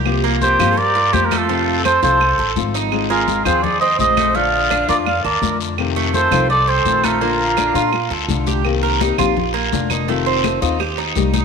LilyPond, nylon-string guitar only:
\new Staff \with { instrumentName = "Nylon-string guitar" } { \time 4/4 \key bes \major \tempo 4 = 168 <c f bes c' f'>4 <f bes c' f'>8 <f bes c' f'>8 r4 <f bes c' f'>4 | <c f a c' f'>4 <f a c' f'>8 <f a c' f'>8 r4 <f a c' f'>4 | <aes c' f'>4 <aes c' f'>8 <c' f'>8 r4 <aes c' f'>4 | <d a d' f'>4 <d a d' f'>8 <a d' f'>8 r4 <d a d' f'>4 |
<c ees a c' f'>4 <ees a c' f'>8 <ees a c' f'>8 r4 <ees a c' f'>4 | <d d' f'>4 <d a d' f'>8 <a d' f'>8 r4 <d a d' f'>4 | <c ees bes c' g'>4 <ees bes c' g'>8 <ees bes c' g'>8 r4 <d bes d' f'>4 | <c ees a c' f'>4 <ees a c' f'>8 <ees a c' f'>8 r4 <g bes ees' g'>4 | }